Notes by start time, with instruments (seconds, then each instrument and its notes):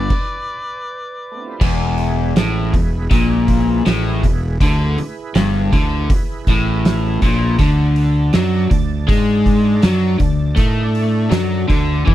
Already playing: overdriven electric guitar B3 D4, lead electric guitar B4, harmonica D5
0.10 kick, crash
1.32 tonewheel organ A3 B3
1.36 tonewheel organ C4 D4
1.42 tonewheel organ E4 F4
1.47 tonewheel organ G4 A4
1.53 tonewheel organ B4 C5
1.59 fingered electric bass E1, overdriven electric guitar E2, tonewheel organ G#3 E4 G#4 B4 D5, kick, crash
1.98 open hi-hat
2.36 fingered electric bass A1, overdriven electric guitar A2, snare, open hi-hat
2.74 fingered electric bass E1, overdriven electric guitar E2, kick, open hi-hat
3.11 fingered electric bass A#1, overdriven electric guitar A#2, kick, open hi-hat
3.48 kick, open hi-hat
3.86 fingered electric bass A1, overdriven electric guitar A2, snare, open hi-hat
4.23 fingered electric bass E1, overdriven electric guitar E2, kick, open hi-hat
4.61 fingered electric bass D2, overdriven electric guitar D3, tonewheel organ E4 G#4 B4, kick, open hi-hat
4.98 muted overdriven electric guitar stroke, muted fingered electric bass stroke, open hi-hat
5.35 fingered electric bass G1, overdriven electric guitar G2, snare, open hi-hat
5.73 fingered electric bass D2, overdriven electric guitar D3, kick, open hi-hat
6.10 muted fingered electric bass stroke, muted overdriven electric guitar stroke, kick, open hi-hat
6.47 fingered electric bass A1, overdriven electric guitar A2, kick, open hi-hat
6.85 snare, open hi-hat
7.22 fingered electric bass A#1, overdriven electric guitar A#2, kick, open hi-hat
7.59 fingered electric bass D2, overdriven electric guitar D3, tonewheel organ D4 D5 A5, kick, open hi-hat
7.96 open hi-hat
8.33 fingered electric bass F#2, overdriven electric guitar F#3, snare, open hi-hat
8.71 fingered electric bass D2, overdriven electric guitar D3, kick, open hi-hat
9.08 fingered electric bass G#2, overdriven electric guitar G#3, kick, open hi-hat
9.46 kick, open hi-hat
9.83 fingered electric bass F#2, overdriven electric guitar F#3, snare, open hi-hat
10.19 fingered electric bass D2, overdriven electric guitar D3, kick, open hi-hat
10.56 fingered electric bass A2, overdriven electric guitar A3, tonewheel organ D#4 A#4 D#5, kick, open hi-hat
10.84 tonewheel organ D4 A4 D5
10.95 open hi-hat
11.30 fingered electric bass F#2, overdriven electric guitar F#3, snare, open hi-hat
11.68 fingered electric bass D2, overdriven electric guitar D3, kick, open hi-hat
12.05 fingered electric bass E2, overdriven electric guitar E3, kick, high tom